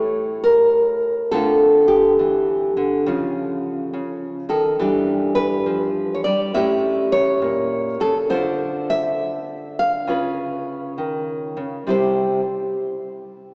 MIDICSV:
0, 0, Header, 1, 2, 480
1, 0, Start_track
1, 0, Tempo, 869565
1, 729, Time_signature, 4, 2, 24, 8
1, 3608, Tempo, 886263
1, 7401, End_track
2, 0, Start_track
2, 0, Title_t, "Nylon-string guitar"
2, 0, Program_c, 0, 24
2, 0, Note_on_c, 0, 45, 71
2, 0, Note_on_c, 0, 57, 46
2, 0, Note_on_c, 0, 64, 48
2, 0, Note_on_c, 0, 67, 46
2, 0, Note_on_c, 0, 73, 87
2, 238, Note_off_c, 0, 67, 0
2, 240, Note_on_c, 0, 70, 84
2, 712, Note_off_c, 0, 57, 0
2, 713, Note_off_c, 0, 64, 0
2, 723, Note_off_c, 0, 73, 0
2, 725, Note_off_c, 0, 70, 0
2, 725, Note_on_c, 0, 69, 85
2, 727, Note_off_c, 0, 45, 0
2, 730, Note_on_c, 0, 50, 71
2, 733, Note_on_c, 0, 57, 50
2, 738, Note_on_c, 0, 60, 47
2, 743, Note_on_c, 0, 65, 48
2, 1034, Note_off_c, 0, 65, 0
2, 1036, Note_on_c, 0, 67, 77
2, 1207, Note_off_c, 0, 50, 0
2, 1209, Note_on_c, 0, 52, 52
2, 1524, Note_off_c, 0, 69, 0
2, 1525, Note_off_c, 0, 52, 0
2, 1527, Note_on_c, 0, 50, 61
2, 1669, Note_off_c, 0, 57, 0
2, 1687, Note_off_c, 0, 50, 0
2, 1691, Note_off_c, 0, 60, 0
2, 1691, Note_on_c, 0, 49, 72
2, 1700, Note_on_c, 0, 53, 46
2, 1701, Note_on_c, 0, 65, 50
2, 2165, Note_off_c, 0, 49, 0
2, 2172, Note_on_c, 0, 49, 58
2, 2475, Note_off_c, 0, 53, 0
2, 2477, Note_off_c, 0, 67, 0
2, 2477, Note_on_c, 0, 51, 64
2, 2481, Note_on_c, 0, 69, 75
2, 2486, Note_off_c, 0, 49, 0
2, 2631, Note_off_c, 0, 65, 0
2, 2642, Note_off_c, 0, 51, 0
2, 2647, Note_on_c, 0, 52, 78
2, 2649, Note_on_c, 0, 55, 51
2, 2654, Note_on_c, 0, 62, 52
2, 2658, Note_on_c, 0, 67, 48
2, 2951, Note_off_c, 0, 69, 0
2, 2953, Note_on_c, 0, 71, 83
2, 3122, Note_off_c, 0, 52, 0
2, 3125, Note_on_c, 0, 53, 55
2, 3390, Note_off_c, 0, 71, 0
2, 3392, Note_on_c, 0, 73, 61
2, 3443, Note_off_c, 0, 73, 0
2, 3445, Note_on_c, 0, 74, 83
2, 3446, Note_off_c, 0, 53, 0
2, 3447, Note_off_c, 0, 55, 0
2, 3453, Note_on_c, 0, 55, 68
2, 3533, Note_off_c, 0, 74, 0
2, 3594, Note_off_c, 0, 62, 0
2, 3596, Note_off_c, 0, 67, 0
2, 3611, Note_on_c, 0, 45, 75
2, 3612, Note_off_c, 0, 55, 0
2, 3613, Note_on_c, 0, 76, 84
2, 3615, Note_on_c, 0, 61, 48
2, 3622, Note_on_c, 0, 64, 48
2, 3624, Note_on_c, 0, 67, 50
2, 3923, Note_off_c, 0, 76, 0
2, 3925, Note_on_c, 0, 73, 85
2, 4083, Note_off_c, 0, 45, 0
2, 4085, Note_on_c, 0, 46, 56
2, 4399, Note_off_c, 0, 46, 0
2, 4401, Note_on_c, 0, 49, 62
2, 4403, Note_off_c, 0, 73, 0
2, 4405, Note_on_c, 0, 69, 82
2, 4492, Note_off_c, 0, 69, 0
2, 4546, Note_off_c, 0, 61, 0
2, 4550, Note_off_c, 0, 64, 0
2, 4550, Note_off_c, 0, 67, 0
2, 4561, Note_on_c, 0, 50, 72
2, 4562, Note_off_c, 0, 49, 0
2, 4564, Note_on_c, 0, 72, 88
2, 4566, Note_on_c, 0, 62, 48
2, 4572, Note_on_c, 0, 65, 48
2, 4887, Note_on_c, 0, 76, 94
2, 5359, Note_off_c, 0, 72, 0
2, 5363, Note_off_c, 0, 76, 0
2, 5371, Note_on_c, 0, 77, 80
2, 5504, Note_off_c, 0, 62, 0
2, 5507, Note_off_c, 0, 65, 0
2, 5521, Note_off_c, 0, 50, 0
2, 5523, Note_on_c, 0, 49, 71
2, 5526, Note_on_c, 0, 61, 43
2, 5530, Note_on_c, 0, 65, 48
2, 5535, Note_on_c, 0, 71, 45
2, 6013, Note_on_c, 0, 51, 52
2, 6326, Note_off_c, 0, 49, 0
2, 6333, Note_on_c, 0, 49, 56
2, 6336, Note_off_c, 0, 51, 0
2, 6480, Note_off_c, 0, 61, 0
2, 6482, Note_off_c, 0, 65, 0
2, 6485, Note_off_c, 0, 71, 0
2, 6493, Note_off_c, 0, 49, 0
2, 6495, Note_on_c, 0, 48, 58
2, 6497, Note_on_c, 0, 55, 54
2, 6503, Note_off_c, 0, 77, 0
2, 6505, Note_on_c, 0, 64, 56
2, 6509, Note_on_c, 0, 67, 51
2, 6515, Note_on_c, 0, 72, 73
2, 6783, Note_off_c, 0, 48, 0
2, 6784, Note_off_c, 0, 55, 0
2, 6788, Note_off_c, 0, 64, 0
2, 6790, Note_off_c, 0, 67, 0
2, 6803, Note_off_c, 0, 72, 0
2, 7401, End_track
0, 0, End_of_file